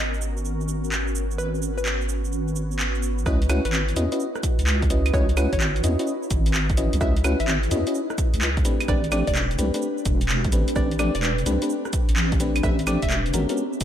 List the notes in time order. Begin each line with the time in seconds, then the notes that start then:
Already playing: G#1 B3 C#4 F#4 A#4
0.14 shaker
0.22 shaker
0.37 shaker
0.45 shaker
0.61 shaker
0.68 shaker
0.84 shaker
0.92 clap, shaker
1.07 shaker
1.15 B4, shaker
1.31 shaker
1.38 B4, shaker
1.55 shaker
1.62 shaker
1.78 B4, shaker
1.86 clap, shaker
2.01 shaker
2.09 shaker
2.25 shaker
2.32 shaker
2.48 shaker
2.56 shaker
2.71 shaker
2.79 clap, shaker
2.95 shaker
3.03 shaker
3.18 shaker
3.26 C#2 C#4 D#4 E4 F#4 B4 D#5, kick, cross-stick, shaker
3.42 closed hi-hat, shaker
3.49 C#4 E4 F#4 B4 F#5, cross-stick, closed hi-hat, claves, shaker
3.65 G#1 B4, closed hi-hat, shaker
3.73 clap, shaker
3.89 closed hi-hat, shaker
3.96 E2 C#4 E4 F#4 B4 D#5, closed hi-hat, shaker
4.12 C#4 E4 F#4 B4 D#5, closed hi-hat, shaker
4.20 shaker
4.36 cross-stick, shaker
4.43 kick, closed hi-hat, shaker
4.59 C#2, closed hi-hat, shaker
4.67 clap, shaker
4.82 kick, closed hi-hat, shaker
4.90 C#4 E4 F#4 B4 D#5, closed hi-hat, shaker
5.06 closed hi-hat, claves, shaker
5.14 C#2 C#4 E4 F#4 B4 C#5 D#5, kick, cross-stick, shaker
5.29 closed hi-hat, shaker
5.37 C#4 E4 F#4 B4 F#5, cross-stick, closed hi-hat, claves, shaker
5.53 G#1 C#5, kick, closed hi-hat, shaker
5.60 clap, shaker
5.76 closed hi-hat, shaker
5.84 E2 C#4 E4 F#4 B4 D#5, closed hi-hat, shaker
5.99 C#4 E4 F#4 B4 D#5, closed hi-hat, shaker
6.07 G#4, shaker
6.23 shaker
6.31 G#1, kick, closed hi-hat, shaker
6.46 closed hi-hat, shaker
6.54 clap, shaker
6.70 kick, closed hi-hat, shaker
6.77 C#4 E4 F#4 B4 D#5, closed hi-hat, shaker
6.93 C#2, closed hi-hat, shaker
7.01 C#2 C#4 E4 F#4 B4 D#5 E5, kick, cross-stick, shaker
7.17 closed hi-hat, shaker
7.24 C#4 E4 F#4 B4 F#5, cross-stick, closed hi-hat, claves, shaker
7.40 G#1 E5, closed hi-hat, shaker
7.48 clap, shaker
7.63 closed hi-hat, shaker
7.71 E2 C#4 E4 F#4 B4 D#5, closed hi-hat, shaker
7.87 C#4 E4 F#4 B4 D#5, closed hi-hat, shaker
7.95 shaker
8.10 cross-stick, shaker
8.18 kick, closed hi-hat, shaker
8.34 C#2, closed hi-hat, shaker
8.41 clap, shaker
8.57 kick, closed hi-hat, shaker
8.65 A3 C4 D4 G4 B4, closed hi-hat, shaker
8.80 closed hi-hat, claves, shaker
8.88 A1 A3 C4 D4 G4 B4 D5, kick, cross-stick, shaker
9.04 closed hi-hat, shaker
9.12 A3 C4 D4 G4 D5, cross-stick, closed hi-hat, claves, shaker
9.27 E1 D5, kick, closed hi-hat, shaker
9.35 clap, shaker
9.51 closed hi-hat, shaker
9.59 C2 A3 C4 D4 G4 B4, closed hi-hat, shaker
9.74 A3 C4 D4 G4 B4, closed hi-hat, shaker
9.82 shaker
9.98 shaker
10.05 E1, kick, closed hi-hat, shaker
10.21 closed hi-hat, shaker
10.29 clap, shaker
10.45 D2, kick, closed hi-hat, shaker
10.52 A1 A3 C4 D4 G4 B4, closed hi-hat, shaker
10.68 closed hi-hat, shaker
10.76 A1 A3 C4 D4 G4 B4 D5, kick, cross-stick, shaker
10.91 closed hi-hat, shaker
10.99 A3 C4 D4 G4 D5, cross-stick, closed hi-hat, claves, shaker
11.15 E1 D5, closed hi-hat, shaker
11.23 clap, shaker
11.38 closed hi-hat, shaker
11.46 C2 A3 C4 D4 G4 B4, closed hi-hat, shaker
11.62 A3 C4 D4 G4 B4, closed hi-hat, shaker
11.70 shaker
11.85 cross-stick, shaker
11.93 kick, closed hi-hat, shaker
12.09 A1, closed hi-hat, shaker
12.16 clap, shaker
12.32 kick, closed hi-hat, shaker
12.40 A3 C4 D4 G4 B4, closed hi-hat, shaker
12.56 closed hi-hat, claves, shaker
12.63 A1 A3 C4 D4 G4 B4 E5, kick, cross-stick, shaker
12.79 closed hi-hat, shaker
12.87 A3 C4 D4 G4 D5, cross-stick, closed hi-hat, claves, shaker
13.02 E1 E5, kick, closed hi-hat, shaker
13.10 clap, shaker
13.26 closed hi-hat, shaker
13.34 G#1 G#3 B3 C#4 F#4 A#4, closed hi-hat, shaker
13.49 G#3 B3 C#4 F#4 A#4, closed hi-hat, shaker
13.57 shaker
13.73 shaker
13.81 D#1, kick, closed hi-hat, shaker